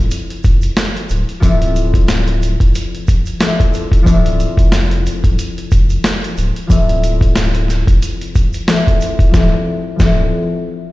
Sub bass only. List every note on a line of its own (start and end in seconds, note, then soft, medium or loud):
0.45 0.70 F1 medium
1.10 1.24 D1 loud
1.43 2.56 D1 loud
2.60 2.71 F1 medium
3.92 4.03 E1 medium
4.07 4.46 D1 loud
4.58 5.08 F1 medium
5.24 5.35 D1 loud
5.72 5.97 F1 medium
6.38 6.52 D1 loud
6.70 7.84 D1 loud
7.88 7.99 F1 medium
9.19 9.30 E1 medium
9.34 9.54 D1 loud
10.00 10.31 D1 loud